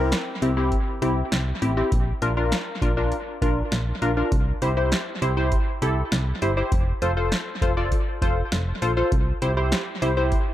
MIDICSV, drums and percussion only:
0, 0, Header, 1, 2, 480
1, 0, Start_track
1, 0, Tempo, 600000
1, 1536, Time_signature, 4, 2, 24, 8
1, 8431, End_track
2, 0, Start_track
2, 0, Title_t, "Drums"
2, 95, Note_on_c, 9, 42, 57
2, 97, Note_on_c, 9, 38, 115
2, 175, Note_off_c, 9, 42, 0
2, 177, Note_off_c, 9, 38, 0
2, 337, Note_on_c, 9, 42, 71
2, 417, Note_off_c, 9, 42, 0
2, 574, Note_on_c, 9, 42, 58
2, 577, Note_on_c, 9, 36, 81
2, 654, Note_off_c, 9, 42, 0
2, 657, Note_off_c, 9, 36, 0
2, 817, Note_on_c, 9, 42, 67
2, 897, Note_off_c, 9, 42, 0
2, 1056, Note_on_c, 9, 38, 113
2, 1056, Note_on_c, 9, 42, 69
2, 1136, Note_off_c, 9, 38, 0
2, 1136, Note_off_c, 9, 42, 0
2, 1296, Note_on_c, 9, 42, 61
2, 1376, Note_off_c, 9, 42, 0
2, 1536, Note_on_c, 9, 36, 105
2, 1536, Note_on_c, 9, 42, 70
2, 1616, Note_off_c, 9, 36, 0
2, 1616, Note_off_c, 9, 42, 0
2, 1775, Note_on_c, 9, 42, 74
2, 1855, Note_off_c, 9, 42, 0
2, 2014, Note_on_c, 9, 42, 58
2, 2017, Note_on_c, 9, 38, 116
2, 2094, Note_off_c, 9, 42, 0
2, 2097, Note_off_c, 9, 38, 0
2, 2253, Note_on_c, 9, 36, 92
2, 2257, Note_on_c, 9, 42, 73
2, 2333, Note_off_c, 9, 36, 0
2, 2337, Note_off_c, 9, 42, 0
2, 2494, Note_on_c, 9, 42, 61
2, 2574, Note_off_c, 9, 42, 0
2, 2734, Note_on_c, 9, 36, 87
2, 2736, Note_on_c, 9, 42, 67
2, 2814, Note_off_c, 9, 36, 0
2, 2816, Note_off_c, 9, 42, 0
2, 2976, Note_on_c, 9, 38, 113
2, 2976, Note_on_c, 9, 42, 74
2, 3056, Note_off_c, 9, 38, 0
2, 3056, Note_off_c, 9, 42, 0
2, 3216, Note_on_c, 9, 42, 61
2, 3296, Note_off_c, 9, 42, 0
2, 3455, Note_on_c, 9, 42, 72
2, 3456, Note_on_c, 9, 36, 105
2, 3535, Note_off_c, 9, 42, 0
2, 3536, Note_off_c, 9, 36, 0
2, 3695, Note_on_c, 9, 42, 73
2, 3775, Note_off_c, 9, 42, 0
2, 3934, Note_on_c, 9, 42, 58
2, 3936, Note_on_c, 9, 38, 111
2, 4014, Note_off_c, 9, 42, 0
2, 4016, Note_off_c, 9, 38, 0
2, 4176, Note_on_c, 9, 42, 70
2, 4256, Note_off_c, 9, 42, 0
2, 4414, Note_on_c, 9, 42, 59
2, 4416, Note_on_c, 9, 36, 88
2, 4494, Note_off_c, 9, 42, 0
2, 4496, Note_off_c, 9, 36, 0
2, 4656, Note_on_c, 9, 42, 70
2, 4736, Note_off_c, 9, 42, 0
2, 4895, Note_on_c, 9, 38, 114
2, 4896, Note_on_c, 9, 42, 70
2, 4975, Note_off_c, 9, 38, 0
2, 4976, Note_off_c, 9, 42, 0
2, 5135, Note_on_c, 9, 42, 64
2, 5215, Note_off_c, 9, 42, 0
2, 5376, Note_on_c, 9, 36, 105
2, 5376, Note_on_c, 9, 42, 71
2, 5456, Note_off_c, 9, 36, 0
2, 5456, Note_off_c, 9, 42, 0
2, 5615, Note_on_c, 9, 42, 73
2, 5695, Note_off_c, 9, 42, 0
2, 5854, Note_on_c, 9, 42, 58
2, 5856, Note_on_c, 9, 38, 117
2, 5934, Note_off_c, 9, 42, 0
2, 5936, Note_off_c, 9, 38, 0
2, 6094, Note_on_c, 9, 36, 92
2, 6097, Note_on_c, 9, 42, 71
2, 6174, Note_off_c, 9, 36, 0
2, 6177, Note_off_c, 9, 42, 0
2, 6334, Note_on_c, 9, 42, 60
2, 6337, Note_on_c, 9, 36, 84
2, 6414, Note_off_c, 9, 42, 0
2, 6417, Note_off_c, 9, 36, 0
2, 6574, Note_on_c, 9, 36, 85
2, 6577, Note_on_c, 9, 42, 67
2, 6654, Note_off_c, 9, 36, 0
2, 6657, Note_off_c, 9, 42, 0
2, 6816, Note_on_c, 9, 38, 114
2, 6816, Note_on_c, 9, 42, 73
2, 6896, Note_off_c, 9, 38, 0
2, 6896, Note_off_c, 9, 42, 0
2, 7056, Note_on_c, 9, 42, 64
2, 7136, Note_off_c, 9, 42, 0
2, 7296, Note_on_c, 9, 36, 105
2, 7296, Note_on_c, 9, 42, 72
2, 7376, Note_off_c, 9, 36, 0
2, 7376, Note_off_c, 9, 42, 0
2, 7536, Note_on_c, 9, 42, 73
2, 7616, Note_off_c, 9, 42, 0
2, 7775, Note_on_c, 9, 42, 58
2, 7777, Note_on_c, 9, 38, 115
2, 7855, Note_off_c, 9, 42, 0
2, 7857, Note_off_c, 9, 38, 0
2, 8017, Note_on_c, 9, 42, 75
2, 8097, Note_off_c, 9, 42, 0
2, 8254, Note_on_c, 9, 42, 62
2, 8257, Note_on_c, 9, 36, 86
2, 8334, Note_off_c, 9, 42, 0
2, 8337, Note_off_c, 9, 36, 0
2, 8431, End_track
0, 0, End_of_file